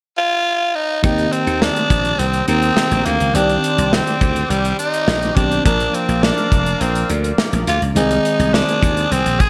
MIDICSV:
0, 0, Header, 1, 6, 480
1, 0, Start_track
1, 0, Key_signature, -3, "major"
1, 0, Tempo, 576923
1, 864, Time_signature, 4, 2, 24, 8
1, 7901, End_track
2, 0, Start_track
2, 0, Title_t, "Analog synth pad"
2, 0, Program_c, 0, 89
2, 862, Note_on_c, 0, 82, 70
2, 863, Note_on_c, 0, 72, 75
2, 865, Note_on_c, 0, 79, 68
2, 865, Note_on_c, 0, 87, 78
2, 2764, Note_off_c, 0, 82, 0
2, 2765, Note_off_c, 0, 72, 0
2, 2765, Note_off_c, 0, 87, 0
2, 2786, Note_on_c, 0, 72, 73
2, 2786, Note_on_c, 0, 86, 77
2, 2787, Note_on_c, 0, 74, 66
2, 4671, Note_off_c, 0, 79, 0
2, 4686, Note_off_c, 0, 72, 0
2, 4686, Note_off_c, 0, 74, 0
2, 4706, Note_on_c, 0, 77, 68
2, 4708, Note_on_c, 0, 70, 79
2, 4708, Note_on_c, 0, 74, 71
2, 6592, Note_off_c, 0, 86, 0
2, 6606, Note_off_c, 0, 77, 0
2, 6607, Note_off_c, 0, 70, 0
2, 6607, Note_off_c, 0, 74, 0
2, 6620, Note_on_c, 0, 87, 82
2, 6621, Note_on_c, 0, 72, 71
2, 6621, Note_on_c, 0, 80, 72
2, 7901, Note_off_c, 0, 72, 0
2, 7901, Note_off_c, 0, 80, 0
2, 7901, Note_off_c, 0, 87, 0
2, 7901, End_track
3, 0, Start_track
3, 0, Title_t, "Tenor saxophone"
3, 0, Program_c, 1, 66
3, 149, Note_on_c, 1, 65, 110
3, 625, Note_on_c, 1, 63, 98
3, 637, Note_off_c, 1, 65, 0
3, 861, Note_off_c, 1, 63, 0
3, 866, Note_on_c, 1, 63, 99
3, 1103, Note_on_c, 1, 60, 88
3, 1115, Note_off_c, 1, 63, 0
3, 1348, Note_on_c, 1, 62, 99
3, 1360, Note_off_c, 1, 60, 0
3, 1822, Note_on_c, 1, 60, 93
3, 1834, Note_off_c, 1, 62, 0
3, 2058, Note_off_c, 1, 60, 0
3, 2063, Note_on_c, 1, 60, 95
3, 2544, Note_on_c, 1, 58, 87
3, 2557, Note_off_c, 1, 60, 0
3, 2788, Note_on_c, 1, 62, 93
3, 2800, Note_off_c, 1, 58, 0
3, 3267, Note_on_c, 1, 60, 91
3, 3279, Note_off_c, 1, 62, 0
3, 3744, Note_on_c, 1, 55, 88
3, 3756, Note_off_c, 1, 60, 0
3, 3982, Note_off_c, 1, 55, 0
3, 3987, Note_on_c, 1, 63, 96
3, 4461, Note_on_c, 1, 62, 89
3, 4474, Note_off_c, 1, 63, 0
3, 4701, Note_off_c, 1, 62, 0
3, 4706, Note_on_c, 1, 62, 93
3, 4949, Note_on_c, 1, 60, 79
3, 4961, Note_off_c, 1, 62, 0
3, 5184, Note_on_c, 1, 62, 89
3, 5196, Note_off_c, 1, 60, 0
3, 5666, Note_on_c, 1, 60, 81
3, 5679, Note_off_c, 1, 62, 0
3, 5905, Note_off_c, 1, 60, 0
3, 6395, Note_on_c, 1, 65, 83
3, 6500, Note_off_c, 1, 65, 0
3, 6629, Note_on_c, 1, 63, 91
3, 7106, Note_on_c, 1, 62, 93
3, 7119, Note_off_c, 1, 63, 0
3, 7585, Note_on_c, 1, 60, 90
3, 7598, Note_off_c, 1, 62, 0
3, 7825, Note_on_c, 1, 68, 105
3, 7837, Note_off_c, 1, 60, 0
3, 7901, Note_off_c, 1, 68, 0
3, 7901, End_track
4, 0, Start_track
4, 0, Title_t, "FM electric piano"
4, 0, Program_c, 2, 5
4, 854, Note_on_c, 2, 51, 59
4, 861, Note_on_c, 2, 58, 54
4, 867, Note_on_c, 2, 60, 54
4, 875, Note_on_c, 2, 67, 68
4, 1030, Control_c, 2, 64, 127
4, 2035, Note_off_c, 2, 51, 0
4, 2039, Note_off_c, 2, 58, 0
4, 2042, Note_off_c, 2, 60, 0
4, 2046, Note_off_c, 2, 67, 0
4, 2061, Note_on_c, 2, 51, 44
4, 2064, Note_on_c, 2, 58, 41
4, 2068, Note_on_c, 2, 60, 42
4, 2070, Note_on_c, 2, 70, 48
4, 2767, Note_off_c, 2, 51, 0
4, 2772, Note_off_c, 2, 60, 0
4, 2777, Note_on_c, 2, 51, 60
4, 2782, Note_on_c, 2, 60, 56
4, 2784, Note_off_c, 2, 58, 0
4, 2787, Note_off_c, 2, 70, 0
4, 2791, Note_on_c, 2, 74, 55
4, 2796, Control_c, 2, 64, 0
4, 2796, Note_on_c, 2, 67, 71
4, 2957, Control_c, 2, 64, 127
4, 4427, Note_off_c, 2, 51, 0
4, 4430, Note_off_c, 2, 60, 0
4, 4434, Note_off_c, 2, 74, 0
4, 4437, Note_off_c, 2, 67, 0
4, 4458, Note_on_c, 2, 51, 48
4, 4462, Note_on_c, 2, 60, 46
4, 4465, Note_on_c, 2, 62, 45
4, 4469, Note_on_c, 2, 67, 54
4, 4696, Note_on_c, 2, 53, 62
4, 4699, Note_off_c, 2, 62, 0
4, 4701, Note_off_c, 2, 51, 0
4, 4703, Note_off_c, 2, 60, 0
4, 4703, Note_on_c, 2, 58, 57
4, 4707, Note_off_c, 2, 67, 0
4, 4709, Note_on_c, 2, 62, 57
4, 4714, Note_on_c, 2, 70, 68
4, 4717, Control_c, 2, 64, 0
4, 4839, Control_c, 2, 64, 127
4, 6587, Note_off_c, 2, 53, 0
4, 6590, Note_off_c, 2, 58, 0
4, 6593, Note_off_c, 2, 62, 0
4, 6596, Note_off_c, 2, 70, 0
4, 6613, Note_on_c, 2, 51, 62
4, 6620, Note_on_c, 2, 56, 56
4, 6628, Note_on_c, 2, 60, 57
4, 6632, Note_on_c, 2, 68, 71
4, 6636, Control_c, 2, 64, 0
4, 6802, Control_c, 2, 64, 127
4, 7901, Note_off_c, 2, 51, 0
4, 7901, Note_off_c, 2, 56, 0
4, 7901, Note_off_c, 2, 60, 0
4, 7901, Note_off_c, 2, 68, 0
4, 7901, End_track
5, 0, Start_track
5, 0, Title_t, "Slap bass"
5, 0, Program_c, 3, 36
5, 864, Note_on_c, 3, 39, 90
5, 1044, Note_off_c, 3, 39, 0
5, 1223, Note_on_c, 3, 39, 94
5, 1404, Note_off_c, 3, 39, 0
5, 1584, Note_on_c, 3, 34, 78
5, 1764, Note_off_c, 3, 34, 0
5, 1824, Note_on_c, 3, 36, 82
5, 2004, Note_off_c, 3, 36, 0
5, 2064, Note_on_c, 3, 39, 88
5, 2244, Note_off_c, 3, 39, 0
5, 2425, Note_on_c, 3, 34, 84
5, 2515, Note_off_c, 3, 34, 0
5, 2547, Note_on_c, 3, 38, 86
5, 2636, Note_off_c, 3, 38, 0
5, 2666, Note_on_c, 3, 37, 83
5, 2756, Note_off_c, 3, 37, 0
5, 2785, Note_on_c, 3, 36, 88
5, 2965, Note_off_c, 3, 36, 0
5, 3146, Note_on_c, 3, 36, 95
5, 3326, Note_off_c, 3, 36, 0
5, 3505, Note_on_c, 3, 38, 81
5, 3685, Note_off_c, 3, 38, 0
5, 3742, Note_on_c, 3, 36, 85
5, 3923, Note_off_c, 3, 36, 0
5, 4223, Note_on_c, 3, 34, 83
5, 4403, Note_off_c, 3, 34, 0
5, 4466, Note_on_c, 3, 35, 86
5, 4645, Note_off_c, 3, 35, 0
5, 4706, Note_on_c, 3, 34, 90
5, 4886, Note_off_c, 3, 34, 0
5, 5063, Note_on_c, 3, 34, 99
5, 5244, Note_off_c, 3, 34, 0
5, 5423, Note_on_c, 3, 29, 81
5, 5604, Note_off_c, 3, 29, 0
5, 5664, Note_on_c, 3, 34, 85
5, 5844, Note_off_c, 3, 34, 0
5, 5904, Note_on_c, 3, 38, 81
5, 6084, Note_off_c, 3, 38, 0
5, 6263, Note_on_c, 3, 34, 84
5, 6354, Note_off_c, 3, 34, 0
5, 6384, Note_on_c, 3, 38, 86
5, 6474, Note_off_c, 3, 38, 0
5, 6504, Note_on_c, 3, 37, 82
5, 6594, Note_off_c, 3, 37, 0
5, 6620, Note_on_c, 3, 36, 94
5, 6802, Note_off_c, 3, 36, 0
5, 6983, Note_on_c, 3, 36, 92
5, 7164, Note_off_c, 3, 36, 0
5, 7344, Note_on_c, 3, 39, 80
5, 7524, Note_off_c, 3, 39, 0
5, 7582, Note_on_c, 3, 36, 85
5, 7673, Note_off_c, 3, 36, 0
5, 7703, Note_on_c, 3, 34, 80
5, 7794, Note_off_c, 3, 34, 0
5, 7901, End_track
6, 0, Start_track
6, 0, Title_t, "Drums"
6, 862, Note_on_c, 9, 42, 85
6, 863, Note_on_c, 9, 36, 110
6, 945, Note_off_c, 9, 42, 0
6, 947, Note_off_c, 9, 36, 0
6, 985, Note_on_c, 9, 42, 42
6, 1069, Note_off_c, 9, 42, 0
6, 1103, Note_on_c, 9, 42, 73
6, 1187, Note_off_c, 9, 42, 0
6, 1225, Note_on_c, 9, 42, 47
6, 1308, Note_off_c, 9, 42, 0
6, 1346, Note_on_c, 9, 38, 105
6, 1430, Note_off_c, 9, 38, 0
6, 1467, Note_on_c, 9, 42, 46
6, 1550, Note_off_c, 9, 42, 0
6, 1583, Note_on_c, 9, 36, 83
6, 1587, Note_on_c, 9, 42, 67
6, 1666, Note_off_c, 9, 36, 0
6, 1671, Note_off_c, 9, 42, 0
6, 1704, Note_on_c, 9, 42, 49
6, 1787, Note_off_c, 9, 42, 0
6, 1825, Note_on_c, 9, 42, 76
6, 1908, Note_off_c, 9, 42, 0
6, 1942, Note_on_c, 9, 42, 53
6, 2025, Note_off_c, 9, 42, 0
6, 2061, Note_on_c, 9, 42, 63
6, 2144, Note_off_c, 9, 42, 0
6, 2184, Note_on_c, 9, 42, 49
6, 2267, Note_off_c, 9, 42, 0
6, 2302, Note_on_c, 9, 38, 104
6, 2385, Note_off_c, 9, 38, 0
6, 2425, Note_on_c, 9, 42, 46
6, 2508, Note_off_c, 9, 42, 0
6, 2543, Note_on_c, 9, 42, 77
6, 2626, Note_off_c, 9, 42, 0
6, 2665, Note_on_c, 9, 42, 50
6, 2748, Note_off_c, 9, 42, 0
6, 2786, Note_on_c, 9, 42, 85
6, 2869, Note_off_c, 9, 42, 0
6, 2907, Note_on_c, 9, 42, 42
6, 2990, Note_off_c, 9, 42, 0
6, 3027, Note_on_c, 9, 42, 75
6, 3110, Note_off_c, 9, 42, 0
6, 3147, Note_on_c, 9, 42, 50
6, 3230, Note_off_c, 9, 42, 0
6, 3269, Note_on_c, 9, 38, 102
6, 3352, Note_off_c, 9, 38, 0
6, 3387, Note_on_c, 9, 42, 45
6, 3471, Note_off_c, 9, 42, 0
6, 3504, Note_on_c, 9, 36, 87
6, 3508, Note_on_c, 9, 42, 70
6, 3588, Note_off_c, 9, 36, 0
6, 3591, Note_off_c, 9, 42, 0
6, 3627, Note_on_c, 9, 42, 51
6, 3710, Note_off_c, 9, 42, 0
6, 3748, Note_on_c, 9, 42, 77
6, 3831, Note_off_c, 9, 42, 0
6, 3867, Note_on_c, 9, 42, 52
6, 3950, Note_off_c, 9, 42, 0
6, 3985, Note_on_c, 9, 42, 64
6, 4068, Note_off_c, 9, 42, 0
6, 4106, Note_on_c, 9, 42, 51
6, 4189, Note_off_c, 9, 42, 0
6, 4224, Note_on_c, 9, 38, 105
6, 4308, Note_off_c, 9, 38, 0
6, 4347, Note_on_c, 9, 42, 47
6, 4430, Note_off_c, 9, 42, 0
6, 4465, Note_on_c, 9, 36, 88
6, 4465, Note_on_c, 9, 42, 79
6, 4548, Note_off_c, 9, 36, 0
6, 4548, Note_off_c, 9, 42, 0
6, 4588, Note_on_c, 9, 42, 49
6, 4672, Note_off_c, 9, 42, 0
6, 4705, Note_on_c, 9, 36, 109
6, 4706, Note_on_c, 9, 42, 84
6, 4788, Note_off_c, 9, 36, 0
6, 4789, Note_off_c, 9, 42, 0
6, 4827, Note_on_c, 9, 42, 43
6, 4910, Note_off_c, 9, 42, 0
6, 4945, Note_on_c, 9, 42, 76
6, 5029, Note_off_c, 9, 42, 0
6, 5066, Note_on_c, 9, 42, 48
6, 5149, Note_off_c, 9, 42, 0
6, 5185, Note_on_c, 9, 38, 105
6, 5268, Note_off_c, 9, 38, 0
6, 5305, Note_on_c, 9, 42, 44
6, 5389, Note_off_c, 9, 42, 0
6, 5423, Note_on_c, 9, 36, 88
6, 5425, Note_on_c, 9, 42, 67
6, 5506, Note_off_c, 9, 36, 0
6, 5508, Note_off_c, 9, 42, 0
6, 5544, Note_on_c, 9, 42, 49
6, 5627, Note_off_c, 9, 42, 0
6, 5664, Note_on_c, 9, 42, 74
6, 5747, Note_off_c, 9, 42, 0
6, 5785, Note_on_c, 9, 42, 54
6, 5868, Note_off_c, 9, 42, 0
6, 5903, Note_on_c, 9, 42, 64
6, 5986, Note_off_c, 9, 42, 0
6, 6025, Note_on_c, 9, 42, 48
6, 6108, Note_off_c, 9, 42, 0
6, 6142, Note_on_c, 9, 38, 106
6, 6226, Note_off_c, 9, 38, 0
6, 6265, Note_on_c, 9, 42, 47
6, 6348, Note_off_c, 9, 42, 0
6, 6384, Note_on_c, 9, 42, 79
6, 6468, Note_off_c, 9, 42, 0
6, 6506, Note_on_c, 9, 42, 48
6, 6589, Note_off_c, 9, 42, 0
6, 6623, Note_on_c, 9, 42, 83
6, 6706, Note_off_c, 9, 42, 0
6, 6745, Note_on_c, 9, 42, 43
6, 6828, Note_off_c, 9, 42, 0
6, 6865, Note_on_c, 9, 42, 78
6, 6949, Note_off_c, 9, 42, 0
6, 6986, Note_on_c, 9, 42, 50
6, 7070, Note_off_c, 9, 42, 0
6, 7106, Note_on_c, 9, 38, 103
6, 7189, Note_off_c, 9, 38, 0
6, 7227, Note_on_c, 9, 42, 45
6, 7310, Note_off_c, 9, 42, 0
6, 7343, Note_on_c, 9, 36, 89
6, 7348, Note_on_c, 9, 42, 66
6, 7426, Note_off_c, 9, 36, 0
6, 7431, Note_off_c, 9, 42, 0
6, 7463, Note_on_c, 9, 42, 48
6, 7546, Note_off_c, 9, 42, 0
6, 7585, Note_on_c, 9, 42, 76
6, 7668, Note_off_c, 9, 42, 0
6, 7704, Note_on_c, 9, 42, 52
6, 7787, Note_off_c, 9, 42, 0
6, 7820, Note_on_c, 9, 42, 62
6, 7821, Note_on_c, 9, 36, 78
6, 7901, Note_off_c, 9, 36, 0
6, 7901, Note_off_c, 9, 42, 0
6, 7901, End_track
0, 0, End_of_file